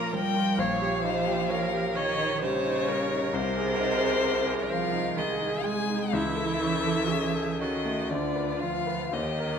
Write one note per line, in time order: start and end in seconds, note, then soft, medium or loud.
0.00 0.56 A#1 medium
0.00 0.13 F3 medium
0.00 0.15 A#3 medium
0.00 0.36 F4 medium
0.00 0.61 A#4 medium
0.00 0.61 C#5 medium
0.00 0.16 A#5 medium
0.13 0.50 F3 medium
0.13 0.61 G3 medium
0.13 0.62 G5 loud
0.36 0.59 F4 medium
0.58 3.29 A#1 medium
0.58 1.96 F3 medium
0.58 1.04 C#5 medium
0.58 1.98 F5 medium
0.81 1.18 G4 medium
1.04 1.41 D#4 medium
1.04 1.52 C5 medium
1.26 1.63 G4 medium
1.49 1.97 A#4 medium
1.49 1.86 C#5 medium
1.73 2.10 G4 medium
1.95 2.44 D#3 loud
1.95 2.42 C#5 medium
1.95 2.33 C#5 medium
1.95 2.42 D#5 loud
2.19 2.56 D#4 medium
2.42 3.36 C#3 medium
2.42 2.79 G3 medium
2.42 2.90 C5 medium
2.42 3.36 C#5 loud
2.66 3.02 D#4 medium
2.88 3.25 G3 medium
2.88 5.17 A#4 medium
3.11 3.34 D#4 medium
3.34 6.10 C2 medium
3.34 4.73 C3 loud
3.34 4.71 C5 loud
3.57 3.93 G#4 medium
3.79 4.16 D#4 medium
4.00 4.38 G#4 medium
4.23 4.61 C5 medium
4.46 4.84 G#4 medium
4.70 5.18 F3 loud
4.70 5.08 C5 medium
4.70 5.20 F5 loud
4.92 5.31 D#4 medium
5.16 5.65 D#3 medium
5.16 5.56 G#3 medium
5.16 6.13 G#4 medium
5.16 5.66 D#5 medium
5.40 5.79 D#4 medium
5.64 6.03 G#3 medium
5.64 6.15 G#3 medium
5.64 6.15 G#5 loud
5.89 6.14 D#4 medium
6.13 8.07 C#2 medium
6.13 7.62 E3 loud
6.13 7.13 E4 medium
6.13 7.61 E5 loud
6.36 6.77 A4 medium
6.62 7.02 C#4 medium
6.85 7.26 A4 medium
7.10 7.51 C#4 medium
7.10 7.63 G#4 medium
7.34 7.75 A4 medium
7.60 8.13 D#3 medium
7.60 8.01 C#4 medium
7.60 8.11 F#4 medium
7.60 8.12 D#5 medium
7.85 8.11 A3 medium
8.10 9.11 D2 medium
8.10 8.64 D3 medium
8.10 9.13 F4 medium
8.10 8.61 D5 medium
8.36 8.77 B4 soft
8.59 9.14 F3 medium
8.59 9.03 F4 medium
8.59 9.15 F5 loud
8.87 9.14 B4 medium
9.13 9.59 D#2 medium
9.13 9.59 D#3 medium
9.13 9.59 G4 medium
9.13 9.59 D#5 medium
9.40 9.59 A#4 medium